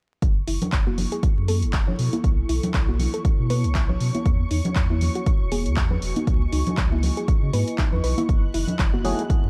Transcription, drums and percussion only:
0.22 kick loud
0.22 closed hi-hat medium
0.48 open hi-hat medium
0.62 closed hi-hat medium
0.62 low conga medium
0.72 kick medium
0.72 clap loud
0.72 closed hi-hat soft
0.87 high conga medium
0.98 open hi-hat medium
0.98 low conga medium
1.12 closed hi-hat medium
1.23 kick loud
1.23 closed hi-hat soft
1.48 open hi-hat loud
1.48 high conga medium
1.62 closed hi-hat medium
1.73 kick loud
1.73 clap loud
1.73 closed hi-hat soft
1.88 low conga medium
1.99 open hi-hat medium
2.13 closed hi-hat medium
2.13 high conga medium
2.24 kick loud
2.24 closed hi-hat medium
2.49 open hi-hat loud
2.63 closed hi-hat medium
2.63 low conga medium
2.74 kick loud
2.74 clap loud
2.74 closed hi-hat soft
2.89 high conga medium
2.99 open hi-hat medium
2.99 low conga medium
3.14 closed hi-hat medium
3.25 kick loud
3.25 closed hi-hat soft
3.50 open hi-hat loud
3.50 high conga medium
3.64 closed hi-hat medium
3.75 kick loud
3.75 clap loud
3.75 closed hi-hat soft
3.89 low conga medium
4.00 open hi-hat medium
4.15 closed hi-hat medium
4.15 high conga medium
4.26 kick loud
4.26 closed hi-hat soft
4.51 open hi-hat loud
4.65 closed hi-hat medium
4.65 low conga medium
4.76 kick loud
4.76 clap loud
4.76 closed hi-hat soft
4.91 high conga medium
5.01 open hi-hat medium
5.01 low conga medium
5.15 closed hi-hat medium
5.26 kick loud
5.26 closed hi-hat soft
5.52 open hi-hat loud
5.52 high conga medium
5.66 closed hi-hat medium
5.76 kick loud
5.76 clap loud
5.76 closed hi-hat soft
5.90 low conga medium
6.02 open hi-hat medium
6.16 closed hi-hat medium
6.16 high conga medium
6.27 kick loud
6.27 closed hi-hat soft
6.53 open hi-hat medium
6.67 closed hi-hat medium
6.67 low conga medium
6.77 kick medium
6.77 clap loud
6.77 closed hi-hat soft
6.92 high conga medium
7.03 open hi-hat medium
7.03 low conga medium
7.17 closed hi-hat medium
7.28 kick loud
7.28 closed hi-hat soft
7.53 open hi-hat loud
7.53 high conga medium
7.68 closed hi-hat medium
7.78 kick loud
7.78 clap loud
7.78 closed hi-hat soft
7.93 low conga medium
8.04 open hi-hat medium
8.18 closed hi-hat medium
8.18 high conga medium
8.29 kick loud
8.29 closed hi-hat soft
8.54 open hi-hat loud
8.67 closed hi-hat medium
8.67 low conga medium
8.79 kick medium
8.79 clap loud
8.79 closed hi-hat soft
8.94 high conga medium
9.05 open hi-hat medium
9.05 low conga medium
9.19 closed hi-hat medium
9.30 kick loud
9.30 closed hi-hat soft

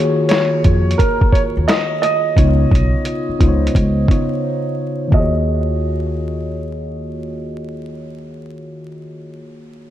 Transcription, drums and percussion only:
0.29 snare loud
0.29 closed hi-hat medium
0.64 kick medium
0.64 closed hi-hat medium
0.91 closed hi-hat medium
0.99 kick medium
0.99 closed hi-hat medium
1.21 kick medium
1.33 kick medium
1.33 closed hi-hat soft
1.69 snare medium
1.69 closed hi-hat medium
2.03 closed hi-hat medium
2.37 kick loud
2.37 closed hi-hat medium
2.71 kick medium
2.71 closed hi-hat medium
3.05 closed hi-hat medium
3.41 kick medium
3.41 closed hi-hat medium
3.67 closed hi-hat soft
3.75 kick medium
3.75 closed hi-hat medium
4.08 kick medium
4.08 closed hi-hat soft
5.12 kick medium

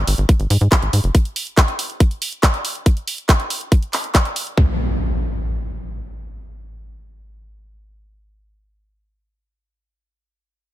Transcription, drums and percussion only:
0.07 open hi-hat loud
0.18 closed hi-hat soft
0.29 kick loud
0.29 closed hi-hat medium
0.40 closed hi-hat soft
0.50 open hi-hat loud
0.61 closed hi-hat soft
0.72 kick loud
0.72 clap loud
0.72 closed hi-hat medium
0.82 closed hi-hat soft
0.93 open hi-hat loud
1.04 closed hi-hat soft
1.15 kick loud
1.15 closed hi-hat medium
1.25 closed hi-hat soft
1.36 open hi-hat loud
1.47 closed hi-hat soft
1.57 kick loud
1.57 clap loud
1.57 closed hi-hat medium
1.68 closed hi-hat soft
1.79 open hi-hat loud
1.90 closed hi-hat soft
2.00 kick loud
2.00 closed hi-hat medium
2.11 closed hi-hat soft
2.22 open hi-hat loud
2.32 closed hi-hat soft
2.43 kick loud
2.43 clap loud
2.43 closed hi-hat medium
2.54 closed hi-hat soft
2.65 open hi-hat loud
2.75 closed hi-hat soft
2.86 kick loud
2.86 closed hi-hat medium
2.97 closed hi-hat soft
3.08 open hi-hat loud
3.18 closed hi-hat soft
3.29 kick loud
3.29 clap loud
3.29 closed hi-hat medium
3.40 closed hi-hat soft
3.50 open hi-hat loud
3.61 closed hi-hat soft
3.72 kick loud
3.72 closed hi-hat medium
3.83 closed hi-hat soft
3.93 clap medium
3.93 open hi-hat loud
4.04 closed hi-hat soft
4.15 kick loud
4.15 clap loud
4.15 closed hi-hat medium
4.25 closed hi-hat soft
4.36 open hi-hat loud
4.47 closed hi-hat soft
4.58 kick loud

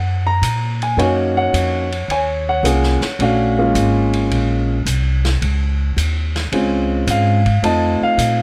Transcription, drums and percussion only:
0.43 hi-hat pedal soft
0.43 ride medium
0.82 ride soft
0.99 ride medium
1.54 hi-hat pedal soft
1.54 ride medium
1.92 ride soft
2.10 ride medium
2.65 hi-hat pedal medium
2.65 ride medium
2.83 snare soft
3.01 snare soft
3.01 ride soft
3.20 ride medium
3.75 hi-hat pedal medium
3.75 ride medium
4.13 ride soft
4.31 ride medium
4.86 hi-hat pedal medium
4.86 ride medium
5.25 snare medium
5.25 ride soft
5.42 ride medium
5.98 hi-hat pedal soft
5.98 ride medium
6.36 snare soft
6.36 ride soft
6.52 ride medium
7.07 hi-hat pedal medium
7.07 ride medium
7.46 kick soft
7.46 ride soft
7.64 ride medium
8.19 hi-hat pedal medium
8.19 ride medium

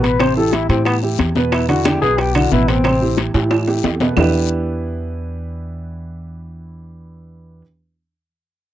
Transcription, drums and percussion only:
0.03 high bongo soft
0.03 high conga medium
0.03 high timbale medium
0.03 short guiro medium
0.20 high bongo medium
0.20 high conga soft
0.20 high timbale medium
0.20 long guiro medium
0.20 claves medium
0.36 high bongo soft
0.36 high conga soft
0.53 high bongo medium
0.53 high conga medium
0.53 high timbale medium
0.53 short guiro medium
0.69 high conga soft
0.69 high timbale medium
0.69 short guiro medium
0.85 high bongo medium
0.85 high conga soft
0.85 high timbale medium
0.85 long guiro medium
0.85 claves medium
1.02 high bongo soft
1.02 high conga soft
1.19 high bongo soft
1.19 low bongo medium
1.19 high conga medium
1.19 high timbale medium
1.19 short guiro medium
1.35 high bongo soft
1.35 high conga medium
1.35 short guiro medium
1.52 high bongo medium
1.52 high conga soft
1.52 high timbale medium
1.52 long guiro medium
1.52 claves medium
1.69 high bongo soft
1.69 high conga soft
1.69 high timbale medium
1.85 high bongo medium
1.85 high conga medium
1.85 high timbale medium
1.85 short guiro medium
1.85 claves medium
2.02 short guiro medium
2.18 high bongo medium
2.18 high conga soft
2.18 high timbale medium
2.18 long guiro medium
2.35 high bongo soft
2.35 high conga soft
2.35 high timbale medium
2.35 claves medium
2.52 high bongo soft
2.52 low bongo medium
2.52 high conga soft
2.52 short guiro medium
2.68 high bongo soft
2.68 high conga medium
2.68 high timbale medium
2.68 short guiro medium
2.84 high bongo medium
2.84 high conga soft
2.84 high timbale medium
2.84 long guiro medium
2.84 claves medium
3.01 high bongo soft
3.01 high conga soft
3.17 high bongo medium
3.17 high conga medium
3.17 high timbale medium
3.17 short guiro medium
3.34 high conga soft
3.34 high timbale medium
3.34 short guiro medium
3.51 high bongo medium
3.51 high conga soft
3.51 high timbale medium
3.51 long guiro medium
3.51 claves medium
3.67 high bongo soft
3.67 high conga soft
3.67 low timbale medium
3.84 high bongo soft
3.84 low bongo medium
3.84 high conga medium
3.84 low timbale medium
3.84 short guiro medium
4.00 high bongo soft
4.00 high conga medium
4.00 low timbale medium
4.00 short guiro medium
4.17 low bongo medium
4.17 low conga medium
4.17 low timbale medium
4.17 long guiro medium
4.17 claves medium

